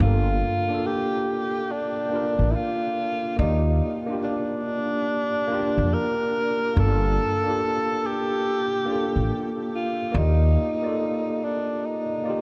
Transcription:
Already playing: tine electric piano A#3
0.00 upright bass G1, tine electric piano D4 F4, tenor saxophone F4
0.04 tine electric piano A4
0.68 tine electric piano A#3 D4 F4
0.74 tine electric piano A4
0.86 tenor saxophone G4
1.71 tenor saxophone D4
2.09 tine electric piano A#3 D4
2.13 tine electric piano F4 A#4
2.39 upright bass A1
2.51 tenor saxophone E4
2.56 tenor saxophone F4
3.36 upright bass D#2, tine electric piano A#3 D5, tenor saxophone D#4
3.41 tine electric piano F4 G4
4.06 tine electric piano A#3 D4
4.10 tine electric piano F4 G4
4.23 tenor saxophone D4
5.47 tine electric piano A#3 D4
5.52 tine electric piano F4 G4
5.78 upright bass F2
5.94 tenor saxophone A#4
6.74 upright bass G1, tine electric piano A#3 D4
6.79 tine electric piano F4 A4, tenor saxophone A4
7.44 tine electric piano A#3 D4
7.48 tine electric piano F4 G4
8.06 tenor saxophone G4
8.85 tine electric piano A#3 D4
8.90 tine electric piano F4 A4
9.16 upright bass A1
9.75 tenor saxophone F4
10.12 upright bass D#2, tine electric piano A#3 D5
10.16 tenor saxophone D#4, tine electric piano F4 G4
10.82 tine electric piano A#3 D5
10.86 tine electric piano F4 A4
11.44 tenor saxophone D4
11.86 tenor saxophone D#4
12.24 tine electric piano A#3 D5
12.28 tine electric piano F4 G4

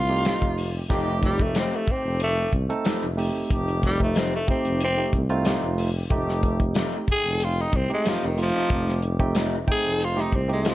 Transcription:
Already playing: tuba C2, tenor saxophone F4
0.09 tine electric piano A3 C4 D#4 G4
0.25 clean electric guitar F3 A3 D#4 G4, snare, closed hi-hat
0.42 tuba F1, kick
0.58 open hi-hat
0.73 horn section D#4 G4
0.88 tuba F1, clean electric guitar F3 A3 D#4 G4, horn section A3 D#4 G4, tine electric piano A3 C4 D#4 G4, kick, closed hi-hat
1.23 tenor saxophone G3, kick, closed hi-hat
1.39 tenor saxophone A3, kick, closed hi-hat
1.55 clean electric guitar F3 A3 D#4 G4, snare, closed hi-hat
1.59 tenor saxophone C4
1.72 tenor saxophone A3, closed hi-hat
1.87 horn section A3 D#4 G4, kick, closed hi-hat
1.91 tenor saxophone C4
2.04 tuba F1
2.20 tenor saxophone A3, closed hi-hat
2.52 tuba C2, kick, closed hi-hat
2.69 tine electric piano A3 C4 D#4 A4, closed hi-hat
2.85 tuba F1, clean electric guitar F3 A3 D#4 G4, snare, closed hi-hat
3.02 tuba F1, closed hi-hat
3.17 tine electric piano A3 C4 D#4 G4, open hi-hat
3.34 tuba F1, horn section D#4 A4
3.49 tuba F1, horn section A3 D#4 G4, kick, closed hi-hat
3.68 closed hi-hat
3.83 tenor saxophone G3, kick, closed hi-hat
3.99 tine electric piano A3 C4 D#4 G4, kick, closed hi-hat
4.03 tenor saxophone A3
4.15 clean electric guitar F3 A3 D#4 G4, tenor saxophone C4, snare, closed hi-hat
4.35 tenor saxophone A3
4.46 horn section A3 D#4 G4, tine electric piano A3 C4 D#4 G4, kick, closed hi-hat
4.50 tenor saxophone C4
4.64 tuba F1, closed hi-hat
4.81 tenor saxophone C4, closed hi-hat
4.97 tine electric piano A3 C4 D#4 G4
5.13 tuba C2, kick, closed hi-hat
5.29 tine electric piano A3 C4 D#4 F4, closed hi-hat
5.45 clean electric guitar F3 A3 D#4 G4, snare, closed hi-hat
5.63 tuba F1
5.78 open hi-hat
5.94 horn section D#4 G4
6.10 tuba F1, horn section A3 D#4 G4, tine electric piano A3 C4 D#4 G4, kick, closed hi-hat
6.29 snare
6.43 kick, closed hi-hat
6.60 kick, closed hi-hat
6.75 clean electric guitar F3 A3 D#4 G4, snare, closed hi-hat
6.92 closed hi-hat
7.07 horn section A3 D#4 G5, kick, closed hi-hat
7.12 tenor saxophone G#4
7.25 tuba F1
7.40 closed hi-hat
7.45 tenor saxophone F4
7.61 tenor saxophone D#4
7.73 tuba C2, tenor saxophone C4, kick, closed hi-hat
7.89 tine electric piano A3 C4 D#4 G4, closed hi-hat
7.93 tenor saxophone G#3
8.05 tuba F1, clean electric guitar F3 A3 D#4 G4, snare, closed hi-hat
8.09 tenor saxophone F3
8.22 tuba F1, closed hi-hat
8.26 tenor saxophone D#3
8.37 tine electric piano A3 C4 D#4 F4, open hi-hat
8.42 tenor saxophone F3
8.54 tuba F1, clean electric guitar A3 D#4 G4, horn section D#4 G4
8.70 tuba F1, horn section A3 D#4 G4, kick, closed hi-hat
8.87 snare, closed hi-hat
9.02 closed hi-hat
9.19 tine electric piano A3 C4 D#4 G4, kick, closed hi-hat
9.35 clean electric guitar F3 A3 D#4 G4, snare, closed hi-hat
9.67 horn section A3 D#4 C5, tine electric piano A3 C4 D#4 G5, kick, closed hi-hat
9.72 tenor saxophone G#4
9.84 tuba F1, closed hi-hat
10.00 closed hi-hat
10.04 tenor saxophone F4
10.16 tine electric piano A3 C4 D#4 G4, snare
10.21 tenor saxophone D#4
10.32 tuba C2, tenor saxophone C4, kick, closed hi-hat
10.48 tine electric piano A3 C4 D#4 G4, closed hi-hat
10.53 tenor saxophone G#3
10.65 clean electric guitar F3 A3 D#4 G4, tenor saxophone F3, snare, closed hi-hat

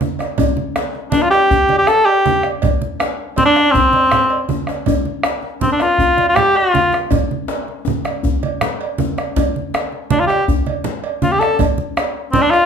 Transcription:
0.01 bombo rim, high conga, djembe tone
0.19 bombo rim, cowbell, djembe slap, high conga
0.38 bombo low, cowbell, low conga, djembe bass
0.57 high conga
0.76 bombo rim, cowbell, djembe slap
0.95 high conga
1.11 cor anglais D4, cowbell, high conga, djembe tone, low conga
1.22 cor anglais F4
1.31 cor anglais G4, bombo rim, cowbell, djembe slap
1.51 bombo rim, bombo low, djembe bass
1.69 cowbell, high conga
1.79 cor anglais G4
1.87 cor anglais A4, bombo rim, djembe slap
2.06 cor anglais G4, cowbell
2.26 bombo rim, high conga, djembe tone
2.43 bombo rim, cowbell, high conga
2.62 bombo rim, bombo low, cowbell, djembe slap, high conga, low conga, djembe bass
2.82 high conga
3.00 bombo rim, cowbell, djembe slap
3.19 djembe slap
3.36 cor anglais C4, cowbell, djembe slap, djembe tone, high conga, low conga
3.45 cor anglais D4
3.56 bombo rim, cowbell, djembe slap
3.71 cor anglais C4, bombo rim, bombo low, djembe bass
3.93 cowbell, high conga
4.11 bombo rim, djembe slap, low conga
4.30 cowbell
4.49 bombo rim, high conga, djembe tone
4.67 bombo rim, cowbell, djembe slap
4.86 bombo low, cowbell, low conga, djembe bass
5.05 high conga
5.23 bombo rim, cowbell, djembe slap
5.43 high conga
5.61 cor anglais C4, high conga, djembe tone, low conga
5.72 cor anglais D4
5.79 cor anglais F4, bombo rim, cowbell, djembe slap
5.98 bombo rim, bombo low, djembe bass
6.17 cowbell, high conga
6.29 cor anglais F4
6.36 cor anglais G4, bombo rim, djembe slap, low conga
6.55 cor anglais F4, cowbell
6.74 bombo rim, djembe tone, high conga
6.93 bombo rim, djembe slap, high conga
7.11 bombo low, cowbell, djembe bass, low conga
7.31 high conga
7.48 cowbell, djembe slap
7.68 high conga
7.85 djembe tone, high conga, low conga
8.05 bombo rim, cowbell, djembe slap
8.23 bombo rim, bombo low, djembe bass
8.43 cowbell, high conga
8.61 bombo rim, djembe slap, low conga
8.81 cowbell
8.98 bombo rim, high conga, djembe tone
9.18 bombo rim, cowbell, djembe slap, high conga
9.36 bombo low, cowbell, low conga, djembe bass
9.56 high conga
9.74 bombo rim, cowbell, djembe slap
9.92 high conga
10.10 cor anglais D4, cowbell, high conga, low conga
10.20 cor anglais F4
10.27 cor anglais G4, bombo rim, cowbell, djembe slap
10.48 bombo rim, bombo low, djembe bass
10.66 cowbell, high conga
10.84 djembe slap, low conga
11.04 cowbell
11.22 cor anglais F4, bombo rim, djembe tone, high conga
11.32 cor anglais G4
11.40 cor anglais A4, bombo rim, cowbell, djembe slap, high conga
11.59 bombo low, cowbell, high conga, low conga, djembe bass
11.78 high conga
11.97 bombo rim, cowbell, djembe slap, high conga
12.33 cor anglais C4, cowbell, high conga, djembe tone, low conga
12.42 cor anglais D4
12.51 cor anglais F4, bombo rim, cowbell, djembe slap

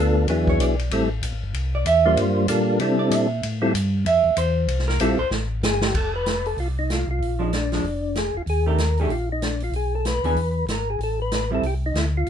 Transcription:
Already playing: tonewheel organ D2 A3 B3 D4 F4 A4, hollow-body jazz guitar A4
0.27 tonewheel organ E2 F#3 B3 D4 E4 G#4, ride
0.47 hollow-body jazz guitar C#5, kick
0.59 tonewheel organ B1, hollow-body jazz guitar D5, hi-hat pedal, ride
0.79 ride
0.91 tonewheel organ A1 G3 A3 C4 E4 A4, ride
1.22 tonewheel organ A#1, hi-hat pedal, ride
1.33 tonewheel organ A1
1.44 tonewheel organ G1
1.54 tonewheel organ C2, ride
1.75 hollow-body jazz guitar D5
1.85 tonewheel organ E2, hollow-body jazz guitar E5, hi-hat pedal, ride
2.05 tonewheel organ G3 A#3 D4 F4 C5
2.17 tonewheel organ G2, ride
2.48 tonewheel organ A#2 G3 A#3 D4 F4 A4, hi-hat pedal, ride
2.79 tonewheel organ C3 G3 C4 D4 E4 A4, ride
2.99 hollow-body jazz guitar D5
3.10 tonewheel organ A#2, hollow-body jazz guitar E5, hi-hat pedal, ride
3.43 tonewheel organ A2, ride
3.62 tonewheel organ G3 C4 E4 F4 A4
3.74 tonewheel organ G2, hi-hat pedal, ride
4.05 tonewheel organ F2, hollow-body jazz guitar E5, ride
4.24 tonewheel organ F2
4.37 tonewheel organ E2, hollow-body jazz guitar C5, hi-hat pedal, ride
4.68 tonewheel organ C2, ride
4.79 snare
4.88 hollow-body jazz guitar A#4, snare
5.00 tonewheel organ A#1 G3 C4 E4 F4 A4, hollow-body jazz guitar A4, hi-hat pedal, ride
5.18 tonewheel organ A#1, hollow-body jazz guitar C5
5.31 tonewheel organ A1, snare
5.62 tonewheel organ G1 G#4, snare, hi-hat pedal
5.81 tonewheel organ G4, snare
5.94 tonewheel organ F1 A4, kick, crash
6.15 tonewheel organ B4
6.26 snare, closed hi-hat
6.46 tonewheel organ A4, open hi-hat
6.57 tonewheel organ C2 F4, open hi-hat
6.79 tonewheel organ D#4
6.90 tonewheel organ F4, snare, closed hi-hat
7.07 tonewheel organ C2 F4
7.19 tonewheel organ A#1, open hi-hat
7.39 hollow-body jazz guitar F3 G#3 D4, tonewheel organ D#4
7.53 tonewheel organ D4, snare, closed hi-hat
7.72 hollow-body jazz guitar F3 G#3 D4, snare, open hi-hat
7.83 tonewheel organ F1, open hi-hat
8.15 tonewheel organ G#4, snare, closed hi-hat
8.35 tonewheel organ F1 F4
8.46 tonewheel organ D#2 G#4, open hi-hat
8.66 hollow-body jazz guitar D#3 A3 D4 G4, tonewheel organ A#4
8.78 snare, closed hi-hat
8.97 hollow-body jazz guitar D#3 A3 D4, tonewheel organ G#4, open hi-hat
9.01 hollow-body jazz guitar G4
9.09 tonewheel organ A#1 F4, open hi-hat
9.32 tonewheel organ D#4
9.42 tonewheel organ D4, snare, closed hi-hat
9.60 tonewheel organ F4, open hi-hat
9.72 tonewheel organ B1, open hi-hat
9.76 tonewheel organ G#4
9.95 tonewheel organ A4
10.05 tonewheel organ B4, snare, closed hi-hat
10.23 tonewheel organ D#2, hollow-body jazz guitar E3 B3 D4 G#4, open hi-hat
10.35 tonewheel organ E2, open hi-hat
10.67 tonewheel organ G#1, snare, closed hi-hat
10.71 tonewheel organ A#4
10.90 tonewheel organ G#4
10.99 tonewheel organ A1, open hi-hat
11.03 tonewheel organ A4
11.22 tonewheel organ B4
11.32 tonewheel organ B4, snare, closed hi-hat
11.51 hollow-body jazz guitar G3 C4 E4, tonewheel organ A4
11.62 tonewheel organ C2, open hi-hat
11.66 tonewheel organ G4
11.86 tonewheel organ D#4
11.94 tonewheel organ D2 E4, snare, closed hi-hat
12.17 tonewheel organ F4
12.27 open hi-hat

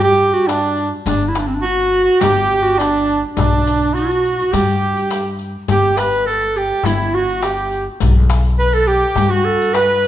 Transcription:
Already playing: upright bass G2
0.02 clarinet G4, soprano saxophone G4
0.34 clarinet F#4, riq
0.47 soprano saxophone D4, clarinet D4, riq, darbuka tek
0.77 riq
1.04 upright bass G1, soprano saxophone D4, clarinet D4, riq, darbuka dum
1.29 clarinet E4
1.35 clarinet D4, riq, darbuka tek
1.47 clarinet C4
1.55 clarinet D4
1.62 soprano saxophone F#4, riq
1.66 clarinet F#4
1.79 riq, darbuka ka
1.93 riq, darbuka ka
2.04 soprano saxophone F#4
2.20 upright bass G1, soprano saxophone G4, clarinet G4, riq, darbuka dum
2.63 clarinet F#4, riq
2.79 soprano saxophone D4, clarinet D4, riq, darbuka tek
3.09 riq
3.34 upright bass B1, soprano saxophone D4, riq
3.38 clarinet D4, darbuka dum
3.67 riq
3.82 riq, darbuka ka
3.94 soprano saxophone F#4, clarinet F#4, riq, darbuka ka
4.11 riq
4.25 riq, darbuka ka
4.40 riq, darbuka ka
4.52 upright bass G2, clarinet G4, soprano saxophone G4, riq, darbuka dum
4.68 riq, darbuka ka
4.97 riq
5.11 riq, darbuka tek
5.39 riq
5.68 upright bass G1, soprano saxophone G4, clarinet G4, riq, darbuka dum
5.97 clarinet B4, soprano saxophone B4, riq, darbuka tek
6.13 riq
6.27 soprano saxophone A4, clarinet A4, riq
6.41 riq, darbuka ka
6.55 clarinet G4, soprano saxophone G4, riq, darbuka ka
6.83 upright bass G1, clarinet E4, soprano saxophone E4, riq, darbuka dum
7.14 clarinet F#4, soprano saxophone F#4
7.29 riq
7.42 soprano saxophone G4, clarinet G4, riq, darbuka tek
7.71 riq
8.00 upright bass B1, riq, darbuka dum
8.30 riq, darbuka tek
8.45 riq
8.59 clarinet B4, soprano saxophone B4, riq
8.70 soprano saxophone A4, clarinet A4 B4, riq, darbuka ka
8.86 clarinet G4, soprano saxophone G4, riq, darbuka ka
9.16 upright bass G2, riq, darbuka dum
9.29 clarinet F#4, soprano saxophone F#4
9.45 clarinet A4
9.61 riq
9.74 clarinet B4, soprano saxophone B4, riq, darbuka tek
10.04 riq

